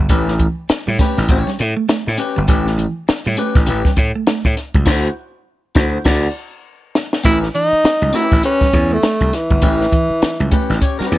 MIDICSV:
0, 0, Header, 1, 8, 480
1, 0, Start_track
1, 0, Tempo, 595829
1, 77, Time_signature, 4, 2, 24, 8
1, 9007, End_track
2, 0, Start_track
2, 0, Title_t, "Clean electric guitar"
2, 0, Program_c, 0, 27
2, 79, Note_on_c, 0, 61, 90
2, 83, Note_on_c, 0, 67, 82
2, 90, Note_on_c, 0, 71, 96
2, 251, Note_off_c, 0, 61, 0
2, 253, Note_off_c, 0, 67, 0
2, 257, Note_off_c, 0, 71, 0
2, 799, Note_on_c, 0, 61, 80
2, 809, Note_on_c, 0, 67, 99
2, 815, Note_on_c, 0, 71, 86
2, 972, Note_off_c, 0, 61, 0
2, 977, Note_off_c, 0, 67, 0
2, 980, Note_off_c, 0, 71, 0
2, 1043, Note_on_c, 0, 61, 96
2, 1051, Note_on_c, 0, 67, 83
2, 1060, Note_on_c, 0, 73, 103
2, 1201, Note_off_c, 0, 61, 0
2, 1206, Note_off_c, 0, 67, 0
2, 1210, Note_off_c, 0, 73, 0
2, 1756, Note_on_c, 0, 61, 92
2, 1762, Note_on_c, 0, 67, 93
2, 1767, Note_on_c, 0, 71, 91
2, 1931, Note_off_c, 0, 61, 0
2, 1934, Note_off_c, 0, 67, 0
2, 1937, Note_off_c, 0, 71, 0
2, 1997, Note_on_c, 0, 61, 82
2, 2004, Note_on_c, 0, 67, 97
2, 2009, Note_on_c, 0, 71, 84
2, 2171, Note_off_c, 0, 61, 0
2, 2175, Note_off_c, 0, 67, 0
2, 2178, Note_off_c, 0, 71, 0
2, 2718, Note_on_c, 0, 61, 75
2, 2726, Note_on_c, 0, 67, 80
2, 2732, Note_on_c, 0, 71, 97
2, 2892, Note_off_c, 0, 61, 0
2, 2896, Note_off_c, 0, 67, 0
2, 2899, Note_off_c, 0, 71, 0
2, 2952, Note_on_c, 0, 61, 94
2, 2959, Note_on_c, 0, 67, 86
2, 2966, Note_on_c, 0, 71, 99
2, 3129, Note_off_c, 0, 61, 0
2, 3132, Note_off_c, 0, 67, 0
2, 3136, Note_off_c, 0, 71, 0
2, 3913, Note_on_c, 0, 64, 106
2, 3921, Note_on_c, 0, 66, 107
2, 3925, Note_on_c, 0, 72, 106
2, 4087, Note_off_c, 0, 64, 0
2, 4092, Note_off_c, 0, 66, 0
2, 4094, Note_off_c, 0, 72, 0
2, 4634, Note_on_c, 0, 64, 95
2, 4642, Note_on_c, 0, 66, 97
2, 4648, Note_on_c, 0, 72, 110
2, 4807, Note_off_c, 0, 64, 0
2, 4812, Note_off_c, 0, 66, 0
2, 4815, Note_off_c, 0, 72, 0
2, 4872, Note_on_c, 0, 64, 101
2, 4882, Note_on_c, 0, 66, 90
2, 4887, Note_on_c, 0, 74, 99
2, 5046, Note_off_c, 0, 64, 0
2, 5052, Note_off_c, 0, 66, 0
2, 5055, Note_off_c, 0, 74, 0
2, 5829, Note_on_c, 0, 61, 96
2, 5840, Note_on_c, 0, 67, 78
2, 5845, Note_on_c, 0, 71, 94
2, 5994, Note_off_c, 0, 61, 0
2, 5999, Note_off_c, 0, 67, 0
2, 6002, Note_off_c, 0, 71, 0
2, 6550, Note_on_c, 0, 61, 82
2, 6560, Note_on_c, 0, 67, 98
2, 6567, Note_on_c, 0, 71, 102
2, 6714, Note_off_c, 0, 61, 0
2, 6719, Note_off_c, 0, 67, 0
2, 6722, Note_off_c, 0, 71, 0
2, 6792, Note_on_c, 0, 61, 72
2, 6801, Note_on_c, 0, 67, 78
2, 6810, Note_on_c, 0, 71, 94
2, 6967, Note_off_c, 0, 61, 0
2, 6972, Note_off_c, 0, 67, 0
2, 6976, Note_off_c, 0, 71, 0
2, 7750, Note_on_c, 0, 61, 84
2, 7756, Note_on_c, 0, 67, 86
2, 7763, Note_on_c, 0, 71, 88
2, 7926, Note_off_c, 0, 61, 0
2, 7929, Note_off_c, 0, 67, 0
2, 7933, Note_off_c, 0, 71, 0
2, 8471, Note_on_c, 0, 61, 86
2, 8479, Note_on_c, 0, 67, 91
2, 8486, Note_on_c, 0, 71, 94
2, 8647, Note_off_c, 0, 61, 0
2, 8651, Note_off_c, 0, 67, 0
2, 8654, Note_off_c, 0, 71, 0
2, 8708, Note_on_c, 0, 61, 69
2, 8715, Note_on_c, 0, 67, 61
2, 8722, Note_on_c, 0, 73, 73
2, 8850, Note_off_c, 0, 73, 0
2, 8853, Note_off_c, 0, 67, 0
2, 8853, Note_on_c, 0, 71, 79
2, 8859, Note_off_c, 0, 61, 0
2, 8862, Note_on_c, 0, 67, 65
2, 8869, Note_on_c, 0, 61, 59
2, 9001, Note_off_c, 0, 71, 0
2, 9006, Note_off_c, 0, 67, 0
2, 9007, Note_off_c, 0, 61, 0
2, 9007, End_track
3, 0, Start_track
3, 0, Title_t, "Tenor saxophone"
3, 0, Program_c, 1, 66
3, 5843, Note_on_c, 1, 64, 106
3, 5950, Note_off_c, 1, 64, 0
3, 6082, Note_on_c, 1, 63, 109
3, 6564, Note_on_c, 1, 64, 93
3, 6576, Note_off_c, 1, 63, 0
3, 6801, Note_off_c, 1, 64, 0
3, 6807, Note_on_c, 1, 61, 107
3, 7195, Note_on_c, 1, 57, 94
3, 7207, Note_off_c, 1, 61, 0
3, 7529, Note_on_c, 1, 52, 95
3, 7542, Note_off_c, 1, 57, 0
3, 8724, Note_off_c, 1, 52, 0
3, 9007, End_track
4, 0, Start_track
4, 0, Title_t, "Clean electric guitar"
4, 0, Program_c, 2, 27
4, 78, Note_on_c, 2, 57, 76
4, 197, Note_off_c, 2, 57, 0
4, 318, Note_on_c, 2, 52, 80
4, 437, Note_off_c, 2, 52, 0
4, 702, Note_on_c, 2, 55, 73
4, 782, Note_off_c, 2, 55, 0
4, 799, Note_on_c, 2, 57, 70
4, 918, Note_off_c, 2, 57, 0
4, 1185, Note_on_c, 2, 55, 69
4, 1264, Note_off_c, 2, 55, 0
4, 1422, Note_on_c, 2, 57, 84
4, 1502, Note_off_c, 2, 57, 0
4, 1520, Note_on_c, 2, 57, 86
4, 1639, Note_off_c, 2, 57, 0
4, 1904, Note_on_c, 2, 55, 69
4, 1983, Note_off_c, 2, 55, 0
4, 1998, Note_on_c, 2, 57, 87
4, 2118, Note_off_c, 2, 57, 0
4, 2239, Note_on_c, 2, 52, 81
4, 2359, Note_off_c, 2, 52, 0
4, 2627, Note_on_c, 2, 55, 75
4, 2705, Note_off_c, 2, 55, 0
4, 2725, Note_on_c, 2, 57, 85
4, 2842, Note_off_c, 2, 57, 0
4, 3112, Note_on_c, 2, 55, 67
4, 3188, Note_off_c, 2, 55, 0
4, 3347, Note_on_c, 2, 57, 73
4, 3425, Note_off_c, 2, 57, 0
4, 3445, Note_on_c, 2, 57, 78
4, 3562, Note_off_c, 2, 57, 0
4, 3831, Note_on_c, 2, 55, 71
4, 3907, Note_off_c, 2, 55, 0
4, 5843, Note_on_c, 2, 57, 86
4, 5959, Note_off_c, 2, 57, 0
4, 6079, Note_on_c, 2, 52, 77
4, 6197, Note_off_c, 2, 52, 0
4, 6459, Note_on_c, 2, 55, 75
4, 6539, Note_off_c, 2, 55, 0
4, 6559, Note_on_c, 2, 57, 76
4, 6677, Note_off_c, 2, 57, 0
4, 6943, Note_on_c, 2, 55, 64
4, 7022, Note_off_c, 2, 55, 0
4, 7180, Note_on_c, 2, 57, 71
4, 7260, Note_off_c, 2, 57, 0
4, 7277, Note_on_c, 2, 57, 67
4, 7396, Note_off_c, 2, 57, 0
4, 7660, Note_on_c, 2, 55, 69
4, 7740, Note_off_c, 2, 55, 0
4, 7757, Note_on_c, 2, 57, 75
4, 7876, Note_off_c, 2, 57, 0
4, 7998, Note_on_c, 2, 52, 82
4, 8117, Note_off_c, 2, 52, 0
4, 8384, Note_on_c, 2, 55, 81
4, 8462, Note_off_c, 2, 55, 0
4, 8477, Note_on_c, 2, 57, 76
4, 8596, Note_off_c, 2, 57, 0
4, 8864, Note_on_c, 2, 55, 72
4, 8943, Note_off_c, 2, 55, 0
4, 9007, End_track
5, 0, Start_track
5, 0, Title_t, "Slap bass"
5, 0, Program_c, 3, 36
5, 77, Note_on_c, 3, 33, 92
5, 371, Note_off_c, 3, 33, 0
5, 707, Note_on_c, 3, 45, 87
5, 779, Note_off_c, 3, 45, 0
5, 951, Note_on_c, 3, 33, 82
5, 1021, Note_off_c, 3, 33, 0
5, 1039, Note_on_c, 3, 33, 100
5, 1149, Note_off_c, 3, 33, 0
5, 1289, Note_on_c, 3, 45, 98
5, 1396, Note_off_c, 3, 45, 0
5, 1672, Note_on_c, 3, 45, 82
5, 1742, Note_off_c, 3, 45, 0
5, 1914, Note_on_c, 3, 31, 90
5, 1984, Note_off_c, 3, 31, 0
5, 2004, Note_on_c, 3, 33, 97
5, 2296, Note_off_c, 3, 33, 0
5, 2630, Note_on_c, 3, 45, 90
5, 2701, Note_off_c, 3, 45, 0
5, 2865, Note_on_c, 3, 33, 80
5, 2938, Note_off_c, 3, 33, 0
5, 2965, Note_on_c, 3, 33, 102
5, 3073, Note_off_c, 3, 33, 0
5, 3198, Note_on_c, 3, 45, 91
5, 3309, Note_off_c, 3, 45, 0
5, 3584, Note_on_c, 3, 45, 91
5, 3657, Note_off_c, 3, 45, 0
5, 3826, Note_on_c, 3, 37, 101
5, 3917, Note_off_c, 3, 37, 0
5, 3921, Note_on_c, 3, 38, 95
5, 4092, Note_off_c, 3, 38, 0
5, 4641, Note_on_c, 3, 38, 98
5, 4811, Note_off_c, 3, 38, 0
5, 4878, Note_on_c, 3, 38, 99
5, 5050, Note_off_c, 3, 38, 0
5, 5840, Note_on_c, 3, 33, 82
5, 6022, Note_off_c, 3, 33, 0
5, 6460, Note_on_c, 3, 37, 98
5, 6534, Note_off_c, 3, 37, 0
5, 6704, Note_on_c, 3, 33, 86
5, 6776, Note_off_c, 3, 33, 0
5, 7036, Note_on_c, 3, 40, 87
5, 7219, Note_off_c, 3, 40, 0
5, 7420, Note_on_c, 3, 36, 81
5, 7494, Note_off_c, 3, 36, 0
5, 7660, Note_on_c, 3, 31, 95
5, 7734, Note_off_c, 3, 31, 0
5, 7753, Note_on_c, 3, 33, 87
5, 7938, Note_off_c, 3, 33, 0
5, 8379, Note_on_c, 3, 37, 99
5, 8453, Note_off_c, 3, 37, 0
5, 8618, Note_on_c, 3, 33, 89
5, 8692, Note_off_c, 3, 33, 0
5, 8956, Note_on_c, 3, 40, 89
5, 9007, Note_off_c, 3, 40, 0
5, 9007, End_track
6, 0, Start_track
6, 0, Title_t, "Muted clean electric guitar strokes"
6, 232, Note_on_c, 9, 29, 42
6, 313, Note_off_c, 9, 29, 0
6, 561, Note_on_c, 9, 29, 50
6, 642, Note_off_c, 9, 29, 0
6, 1284, Note_on_c, 9, 29, 41
6, 1365, Note_off_c, 9, 29, 0
6, 1663, Note_on_c, 9, 29, 42
6, 1744, Note_off_c, 9, 29, 0
6, 2148, Note_on_c, 9, 29, 45
6, 2228, Note_off_c, 9, 29, 0
6, 2487, Note_on_c, 9, 29, 47
6, 2567, Note_off_c, 9, 29, 0
6, 3205, Note_on_c, 9, 29, 44
6, 3285, Note_off_c, 9, 29, 0
6, 3591, Note_on_c, 9, 29, 42
6, 3672, Note_off_c, 9, 29, 0
6, 5983, Note_on_c, 9, 29, 49
6, 6063, Note_off_c, 9, 29, 0
6, 6324, Note_on_c, 9, 29, 41
6, 6404, Note_off_c, 9, 29, 0
6, 7423, Note_on_c, 9, 29, 43
6, 7504, Note_off_c, 9, 29, 0
6, 7901, Note_on_c, 9, 29, 46
6, 7982, Note_off_c, 9, 29, 0
6, 8241, Note_on_c, 9, 29, 44
6, 8321, Note_off_c, 9, 29, 0
6, 9007, End_track
7, 0, Start_track
7, 0, Title_t, "Muted slap bass strokes"
7, 563, Note_on_c, 9, 29, 46
7, 644, Note_off_c, 9, 29, 0
7, 2491, Note_on_c, 9, 29, 51
7, 2571, Note_off_c, 9, 29, 0
7, 6224, Note_on_c, 9, 29, 39
7, 6305, Note_off_c, 9, 29, 0
7, 6317, Note_on_c, 9, 29, 42
7, 6398, Note_off_c, 9, 29, 0
7, 6941, Note_on_c, 9, 29, 45
7, 7021, Note_off_c, 9, 29, 0
7, 7274, Note_on_c, 9, 29, 48
7, 7355, Note_off_c, 9, 29, 0
7, 8138, Note_on_c, 9, 29, 49
7, 8218, Note_off_c, 9, 29, 0
7, 8237, Note_on_c, 9, 29, 45
7, 8318, Note_off_c, 9, 29, 0
7, 8862, Note_on_c, 9, 29, 46
7, 8943, Note_off_c, 9, 29, 0
7, 9007, End_track
8, 0, Start_track
8, 0, Title_t, "Drums"
8, 72, Note_on_c, 9, 42, 96
8, 76, Note_on_c, 9, 36, 104
8, 153, Note_off_c, 9, 42, 0
8, 156, Note_off_c, 9, 36, 0
8, 224, Note_on_c, 9, 38, 38
8, 305, Note_off_c, 9, 38, 0
8, 317, Note_on_c, 9, 36, 70
8, 317, Note_on_c, 9, 42, 65
8, 398, Note_off_c, 9, 36, 0
8, 398, Note_off_c, 9, 42, 0
8, 557, Note_on_c, 9, 42, 91
8, 562, Note_on_c, 9, 38, 111
8, 637, Note_off_c, 9, 42, 0
8, 642, Note_off_c, 9, 38, 0
8, 791, Note_on_c, 9, 46, 56
8, 798, Note_on_c, 9, 36, 95
8, 799, Note_on_c, 9, 38, 39
8, 872, Note_off_c, 9, 46, 0
8, 879, Note_off_c, 9, 36, 0
8, 880, Note_off_c, 9, 38, 0
8, 947, Note_on_c, 9, 38, 37
8, 1027, Note_off_c, 9, 38, 0
8, 1034, Note_on_c, 9, 42, 88
8, 1038, Note_on_c, 9, 36, 94
8, 1115, Note_off_c, 9, 42, 0
8, 1118, Note_off_c, 9, 36, 0
8, 1187, Note_on_c, 9, 38, 39
8, 1267, Note_off_c, 9, 38, 0
8, 1279, Note_on_c, 9, 42, 76
8, 1360, Note_off_c, 9, 42, 0
8, 1521, Note_on_c, 9, 42, 92
8, 1526, Note_on_c, 9, 38, 113
8, 1602, Note_off_c, 9, 42, 0
8, 1606, Note_off_c, 9, 38, 0
8, 1669, Note_on_c, 9, 38, 39
8, 1749, Note_off_c, 9, 38, 0
8, 1766, Note_on_c, 9, 42, 89
8, 1847, Note_off_c, 9, 42, 0
8, 2000, Note_on_c, 9, 42, 94
8, 2001, Note_on_c, 9, 36, 99
8, 2080, Note_off_c, 9, 42, 0
8, 2082, Note_off_c, 9, 36, 0
8, 2148, Note_on_c, 9, 38, 38
8, 2229, Note_off_c, 9, 38, 0
8, 2244, Note_on_c, 9, 42, 71
8, 2325, Note_off_c, 9, 42, 0
8, 2482, Note_on_c, 9, 42, 81
8, 2487, Note_on_c, 9, 38, 111
8, 2563, Note_off_c, 9, 42, 0
8, 2568, Note_off_c, 9, 38, 0
8, 2619, Note_on_c, 9, 42, 60
8, 2700, Note_off_c, 9, 42, 0
8, 2714, Note_on_c, 9, 42, 80
8, 2795, Note_off_c, 9, 42, 0
8, 2863, Note_on_c, 9, 36, 119
8, 2869, Note_on_c, 9, 38, 36
8, 2944, Note_off_c, 9, 36, 0
8, 2949, Note_off_c, 9, 38, 0
8, 2953, Note_on_c, 9, 42, 88
8, 3034, Note_off_c, 9, 42, 0
8, 3101, Note_on_c, 9, 36, 93
8, 3104, Note_on_c, 9, 38, 38
8, 3182, Note_off_c, 9, 36, 0
8, 3185, Note_off_c, 9, 38, 0
8, 3195, Note_on_c, 9, 42, 78
8, 3198, Note_on_c, 9, 36, 95
8, 3275, Note_off_c, 9, 42, 0
8, 3279, Note_off_c, 9, 36, 0
8, 3437, Note_on_c, 9, 42, 92
8, 3442, Note_on_c, 9, 38, 113
8, 3518, Note_off_c, 9, 42, 0
8, 3522, Note_off_c, 9, 38, 0
8, 3583, Note_on_c, 9, 36, 94
8, 3664, Note_off_c, 9, 36, 0
8, 3681, Note_on_c, 9, 38, 34
8, 3682, Note_on_c, 9, 42, 89
8, 3762, Note_off_c, 9, 38, 0
8, 3762, Note_off_c, 9, 42, 0
8, 3823, Note_on_c, 9, 36, 99
8, 3903, Note_off_c, 9, 36, 0
8, 3917, Note_on_c, 9, 49, 79
8, 3918, Note_on_c, 9, 36, 107
8, 3922, Note_on_c, 9, 38, 96
8, 3997, Note_off_c, 9, 49, 0
8, 3999, Note_off_c, 9, 36, 0
8, 4002, Note_off_c, 9, 38, 0
8, 4638, Note_on_c, 9, 36, 121
8, 4643, Note_on_c, 9, 38, 110
8, 4719, Note_off_c, 9, 36, 0
8, 4724, Note_off_c, 9, 38, 0
8, 4876, Note_on_c, 9, 49, 77
8, 4878, Note_on_c, 9, 36, 104
8, 4880, Note_on_c, 9, 38, 106
8, 4956, Note_off_c, 9, 49, 0
8, 4958, Note_off_c, 9, 36, 0
8, 4961, Note_off_c, 9, 38, 0
8, 5601, Note_on_c, 9, 38, 102
8, 5682, Note_off_c, 9, 38, 0
8, 5744, Note_on_c, 9, 38, 83
8, 5824, Note_off_c, 9, 38, 0
8, 5836, Note_on_c, 9, 42, 96
8, 5838, Note_on_c, 9, 36, 106
8, 5917, Note_off_c, 9, 42, 0
8, 5918, Note_off_c, 9, 36, 0
8, 5986, Note_on_c, 9, 38, 36
8, 6066, Note_off_c, 9, 38, 0
8, 6081, Note_on_c, 9, 42, 66
8, 6162, Note_off_c, 9, 42, 0
8, 6321, Note_on_c, 9, 42, 74
8, 6326, Note_on_c, 9, 38, 119
8, 6401, Note_off_c, 9, 42, 0
8, 6406, Note_off_c, 9, 38, 0
8, 6554, Note_on_c, 9, 42, 76
8, 6562, Note_on_c, 9, 38, 37
8, 6635, Note_off_c, 9, 42, 0
8, 6643, Note_off_c, 9, 38, 0
8, 6701, Note_on_c, 9, 36, 113
8, 6708, Note_on_c, 9, 38, 40
8, 6781, Note_off_c, 9, 36, 0
8, 6789, Note_off_c, 9, 38, 0
8, 6793, Note_on_c, 9, 42, 81
8, 6874, Note_off_c, 9, 42, 0
8, 6938, Note_on_c, 9, 36, 92
8, 6942, Note_on_c, 9, 38, 34
8, 7018, Note_off_c, 9, 36, 0
8, 7022, Note_off_c, 9, 38, 0
8, 7034, Note_on_c, 9, 42, 77
8, 7036, Note_on_c, 9, 36, 91
8, 7115, Note_off_c, 9, 42, 0
8, 7116, Note_off_c, 9, 36, 0
8, 7274, Note_on_c, 9, 42, 85
8, 7278, Note_on_c, 9, 38, 104
8, 7354, Note_off_c, 9, 42, 0
8, 7359, Note_off_c, 9, 38, 0
8, 7418, Note_on_c, 9, 36, 83
8, 7499, Note_off_c, 9, 36, 0
8, 7516, Note_on_c, 9, 38, 35
8, 7517, Note_on_c, 9, 42, 92
8, 7597, Note_off_c, 9, 38, 0
8, 7597, Note_off_c, 9, 42, 0
8, 7657, Note_on_c, 9, 36, 88
8, 7738, Note_off_c, 9, 36, 0
8, 7747, Note_on_c, 9, 42, 97
8, 7753, Note_on_c, 9, 36, 107
8, 7828, Note_off_c, 9, 42, 0
8, 7833, Note_off_c, 9, 36, 0
8, 7901, Note_on_c, 9, 38, 38
8, 7982, Note_off_c, 9, 38, 0
8, 7995, Note_on_c, 9, 36, 87
8, 7997, Note_on_c, 9, 42, 66
8, 8075, Note_off_c, 9, 36, 0
8, 8077, Note_off_c, 9, 42, 0
8, 8234, Note_on_c, 9, 42, 79
8, 8239, Note_on_c, 9, 38, 109
8, 8314, Note_off_c, 9, 42, 0
8, 8319, Note_off_c, 9, 38, 0
8, 8469, Note_on_c, 9, 42, 77
8, 8474, Note_on_c, 9, 36, 101
8, 8549, Note_off_c, 9, 42, 0
8, 8555, Note_off_c, 9, 36, 0
8, 8627, Note_on_c, 9, 38, 38
8, 8708, Note_off_c, 9, 38, 0
8, 8712, Note_on_c, 9, 42, 83
8, 8713, Note_on_c, 9, 36, 82
8, 8793, Note_off_c, 9, 42, 0
8, 8794, Note_off_c, 9, 36, 0
8, 8865, Note_on_c, 9, 38, 40
8, 8946, Note_off_c, 9, 38, 0
8, 8958, Note_on_c, 9, 42, 80
8, 9007, Note_off_c, 9, 42, 0
8, 9007, End_track
0, 0, End_of_file